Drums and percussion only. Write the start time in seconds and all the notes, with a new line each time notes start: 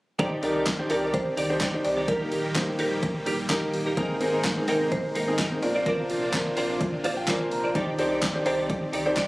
0.19 kick, closed hi-hat
0.43 open hi-hat
0.66 kick, snare, clap, closed hi-hat
0.90 open hi-hat
1.14 kick, closed hi-hat
1.37 open hi-hat
1.61 kick, snare, clap, closed hi-hat
1.85 open hi-hat
2.08 kick, closed hi-hat
2.32 open hi-hat
2.55 kick, snare, clap, closed hi-hat
2.79 open hi-hat
3.03 kick, closed hi-hat
3.26 open hi-hat
3.50 kick, snare, clap, closed hi-hat
3.74 open hi-hat
3.97 kick, closed hi-hat
4.21 open hi-hat
4.44 kick, snare, clap, closed hi-hat
4.68 open hi-hat
4.92 kick, closed hi-hat
5.15 open hi-hat
5.39 kick, snare, clap, closed hi-hat
5.63 open hi-hat
5.86 kick, closed hi-hat
6.10 open hi-hat
6.33 kick, snare, clap, closed hi-hat
6.57 open hi-hat
6.81 kick, closed hi-hat
7.04 open hi-hat
7.28 kick, snare, clap, closed hi-hat
7.51 open hi-hat
7.75 kick, closed hi-hat
7.99 open hi-hat
8.22 kick, snare, clap, closed hi-hat
8.46 open hi-hat
8.70 kick, closed hi-hat
8.93 open hi-hat
9.17 kick, snare, clap, closed hi-hat